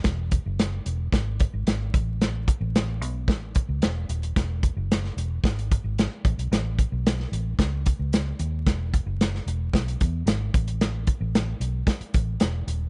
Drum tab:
HH |x-x-x-x-x-x-x-x-|x-x-x-x-x-x-x-xx|x-x-x-x-xxx-x-xx|x-x-x-x-x-x-x-x-|
SD |o---o---o---o---|o---o---o---o---|o---oo--o---o---|o---oo--o---o---|
BD |o-o-----o-o---o-|--o-----o-o-----|o-o-----o-o---o-|--o-----o-o-----|

HH |x-x-x-x-xxx-x-xx|x-x-x-x-xxx-x-x-|
SD |o---oo--o---o---|o---o---o---o---|
BD |o-o-----o-o---o-|--o-----o-o-----|